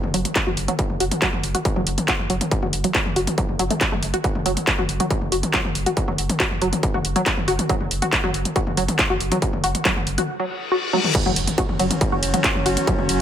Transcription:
0.04 F#1, mid tom
0.14 F#1 F#3, open hi-hat
0.25 closed hi-hat, mid tom
0.36 kick, clap, closed hi-hat
0.47 F#1 F#4, mid tom
0.57 F#1, open hi-hat
0.68 F#3, closed hi-hat, mid tom
0.79 kick, closed hi-hat
0.90 F#1, mid tom
1.00 F#1 F#4, open hi-hat
1.11 closed hi-hat, mid tom
1.22 F#3, kick, clap, closed hi-hat
1.33 F#1, mid tom
1.43 F#1, open hi-hat
1.55 F#4, closed hi-hat, mid tom
1.65 kick, closed hi-hat
1.76 F#1 F#3, mid tom
1.87 F#1, open hi-hat
1.98 closed hi-hat, mid tom
2.08 F#4, kick, clap, closed hi-hat
2.19 F#1, mid tom
2.30 F#1 F#3, open hi-hat
2.41 closed hi-hat, mid tom
2.51 kick, closed hi-hat
2.63 F#1 F#4, mid tom
2.73 F#1, open hi-hat
2.84 F#3, closed hi-hat, mid tom
2.95 kick, clap, closed hi-hat
3.06 F#1, mid tom
3.16 F#1 F#4, open hi-hat
3.27 closed hi-hat, mid tom
3.38 F#3, kick, closed hi-hat
3.49 F#1, mid tom
3.59 F#1 F#3, open hi-hat
3.70 A3, closed hi-hat, mid tom
3.81 kick, clap, closed hi-hat
3.92 F#1 A3, mid tom
4.03 F#1, open hi-hat
4.14 F#4, closed hi-hat, mid tom
4.24 F#4, kick, closed hi-hat
4.35 F#1, mid tom
4.46 F#1 F#3, open hi-hat
4.57 closed hi-hat, mid tom
4.67 kick, clap, closed hi-hat
4.78 F#1 F#4, mid tom
4.89 F#1, open hi-hat
5.00 F#3, closed hi-hat, mid tom
5.10 kick, closed hi-hat
5.22 F#1, mid tom
5.32 F#1 F#4, open hi-hat
5.43 closed hi-hat, mid tom
5.54 F#3, kick, clap, closed hi-hat
5.65 F#1, mid tom
5.75 F#1, open hi-hat
5.86 F#4, closed hi-hat, mid tom
5.97 kick, closed hi-hat
6.08 F#1 F#3, mid tom
6.18 F#1, open hi-hat
6.29 closed hi-hat, mid tom
6.40 F#4, kick, clap, closed hi-hat
6.51 F#1, mid tom
6.62 F#1 F#3, open hi-hat
6.73 closed hi-hat, mid tom
6.83 kick, closed hi-hat
6.94 F#1 F#4, mid tom
7.05 F#1, open hi-hat
7.16 F#3, closed hi-hat, mid tom
7.26 kick, clap, closed hi-hat
7.37 F#1, mid tom
7.48 F#1 F#4, open hi-hat
7.59 closed hi-hat, mid tom
7.69 F#3, kick, closed hi-hat
7.81 F#1, mid tom
7.91 F#1, open hi-hat
8.02 F#4, closed hi-hat, mid tom
8.13 kick, clap, closed hi-hat
8.24 F#1 F#3, mid tom
8.34 F#1, open hi-hat
8.45 closed hi-hat, mid tom
8.56 F#4, kick, closed hi-hat
8.67 F#1, mid tom
8.77 F#1 F#3, open hi-hat
8.88 closed hi-hat, mid tom
8.99 kick, clap, closed hi-hat
9.10 F#1 F#4, mid tom
9.20 F#1, open hi-hat
9.32 F#3, closed hi-hat, mid tom
9.42 kick, closed hi-hat
9.53 F#1, mid tom
9.64 F#1 F#4, open hi-hat
9.75 closed hi-hat, mid tom
9.85 F#3, kick, clap, closed hi-hat
9.96 F#1, mid tom
10.07 F#1, open hi-hat
10.18 F#4, closed hi-hat, mid tom
10.28 reverse cymbal
10.40 F#3
10.72 F#4
10.93 F#3, high tom
11.04 mid tom
11.15 F#3 C#4, kick, closed hi-hat, ride, crash, impact
11.26 F#1 F#3, mid tom
11.36 F#1, open hi-hat, ride
11.47 closed hi-hat, mid tom
11.58 F#4, kick, closed hi-hat, ride
11.69 F#1, mid tom
11.79 F#1 F#3, open hi-hat, ride
11.91 closed hi-hat, mid tom
12.01 kick, closed hi-hat, ride
12.12 F#1 F#4, mid tom
12.23 F#1, open hi-hat, ride
12.34 F#3, closed hi-hat, mid tom
12.44 kick, clap, closed hi-hat, ride
12.55 F#1, mid tom
12.66 F#1 F#4, open hi-hat, ride
12.77 closed hi-hat, mid tom
12.87 F#3, kick, closed hi-hat, ride
12.98 F#1, mid tom
13.09 F#1, open hi-hat, ride

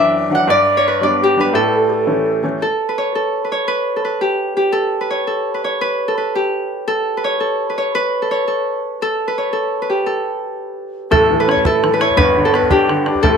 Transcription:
Already playing: F#2 E3 F#3 D4 B4 D5 E5 G5
0.15 E5
0.30 E3 F#3 D4 F#5
0.35 F#5
0.47 G2 D5
0.77 C#5
0.88 B4
1.00 G3 B3 D4 D5
1.20 G4
1.37 G3 B3 D4 B4
1.53 A2 A4
1.72 A4 B4
1.89 G4 A4
2.07 E3 A3 C#4
2.43 E3 A3 C#4
2.62 A4
2.89 B4
2.98 C#5
3.15 A4
3.44 B4
3.52 C#5
3.68 B4
3.96 A4
4.05 B4
4.21 G4
4.57 G4
4.72 A4
5.01 B4
5.10 C#5
5.27 A4
5.54 B4
5.64 C#5
5.81 B4
6.08 A4
6.18 B4
6.35 G4
6.88 A4
7.17 B4
7.24 C#5
7.40 A4
7.70 B4
7.78 C#5
7.95 B4
8.22 A4
8.31 C#5
8.48 A4
9.02 A4
9.28 B4
9.38 C#5
9.53 A4
9.82 B4
9.89 G4
10.06 A4
11.11 A1 A2 A4, bodhran
11.30 E3, bodhran
11.40 B4
11.48 C#4 C#5, bodhran
11.57 bodhran
11.65 E4 A4 B4, bodhran
11.69 A4
11.83 E3, bodhran
11.93 B4
12.00 E4 C#5, bodhran
12.10 bodhran
12.17 G1 G2 B4, bodhran
12.36 D3, bodhran
12.45 A4
12.52 B3 B4, bodhran
12.57 B4
12.63 bodhran
12.70 D4 G4, bodhran
12.89 D3, bodhran
13.06 D4 G4, bodhran
13.15 bodhran
13.23 A1 A2 A4 B4, bodhran
13.27 A4

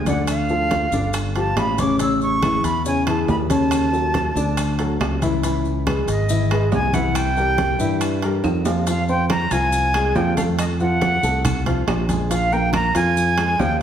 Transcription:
Already playing: D2
0.06 D3 D4 D5 F#5, high conga, high timbale, maracas
0.27 F5, high conga, high timbale, claves, maracas
0.49 F3 F4 A4, high conga, maracas
0.71 high conga, high timbale, low timbale, maracas
0.92 G1 D3 D4 D5, high conga, maracas
1.13 high conga, high timbale, claves, maracas
1.35 F3 F4 G4 A5, high conga, high timbale, maracas
1.56 A1 B5, high conga, high timbale, low timbale, claves, maracas
1.78 C#3 C#4 C#5 D6, high conga, high timbale, maracas
1.99 C#3 C#4 C#5 E6, high conga, high timbale, maracas
2.21 C#6, high conga, maracas
2.43 E3 E4 G#4, high conga, high timbale, low timbale, claves, maracas
2.64 E2 B5, high timbale, maracas
2.86 C#3 C#4 C#5 G#5, high conga, maracas
3.07 E3 E4 G#4 A5, high conga, high timbale, claves, maracas
3.28 D#2 B5, high conga, low timbale, maracas
3.50 C#3 C#4 C#5 A5, high conga, high timbale, maracas
3.71 high conga, high timbale, claves, maracas
3.93 F#3 F#4 A4, high conga, maracas
4.14 high conga, high timbale, low timbale, maracas
4.36 D2 D3 D4 D5, high conga, maracas
4.57 high conga, high timbale, claves, maracas
4.79 F#3 F#4 A4, high conga, high timbale, maracas
5.00 C#2, high conga, high timbale, low timbale, claves, maracas
5.22 E3 E4 E5, high conga, high timbale, maracas
5.43 E3 E4 E5, high conga, high timbale, maracas
5.65 high conga, maracas
5.87 G#3 G#4 B4, high conga, high timbale, low timbale, claves, maracas
6.07 G#1 D#5, high timbale, maracas
6.29 E3 E4 E5, high conga, maracas
6.51 G#3 G#4 B4, high conga, high timbale, claves, maracas
6.72 C2 G#5, high conga, low timbale, maracas
6.93 E3 E4 E5 F#5, high conga, high timbale, maracas
7.15 G5, high conga, high timbale, claves, maracas
7.37 G3 G4 A#4, high conga, maracas
7.58 high conga, high timbale, low timbale, maracas
7.79 G2 E3 E4 E5, high conga, maracas
8.01 high conga, high timbale, claves, maracas
8.22 G3 G4 A#4, high conga, high timbale, maracas
8.44 F2, high conga, high timbale, claves, maracas
8.65 F3 F4 F5, low timbale, maracas
8.87 F3 F4 F5, high conga, high timbale, maracas
9.08 C4 C5 G5 C6, high conga, maracas
9.29 A#5, high conga, high timbale, low timbale, claves, maracas
9.51 C2 F3 F4 F5 G#5, high timbale, maracas
9.72 high conga, maracas
9.94 G#3 G#4 G#5, high conga, high timbale, claves, maracas
10.15 F2 F3 F4 F5 G5, high conga, low timbale, maracas
10.37 A3 A4 F5 A5, high conga, high timbale, maracas
10.58 D#5, high conga, high timbale, claves, maracas
10.80 F3 F4 F#5, high conga, maracas
11.01 high conga, high timbale, low timbale, maracas
11.23 C2 A3 A4 A5, high conga, maracas
11.45 high conga, low conga, high timbale, claves, maracas
11.66 F3 F4 F5, high conga, low conga, high timbale, maracas
11.87 A#1, high conga, high timbale, low timbale, claves, maracas
12.09 G#3 G#4 G#5, high conga, high timbale, maracas
12.30 F3 F4 F5, high conga, high timbale, maracas
12.51 A#3 A#4 G5 A#5, high conga, maracas
12.73 A#5, high conga, high timbale, low timbale, claves, maracas
12.95 F2 F3 F4 F5 G#5, high timbale, maracas
13.17 high conga, maracas
13.38 G#3 G#4 G#5, high conga, high timbale, claves, maracas
13.59 D#2 F3 F4 F5 G5, high conga, low timbale, maracas

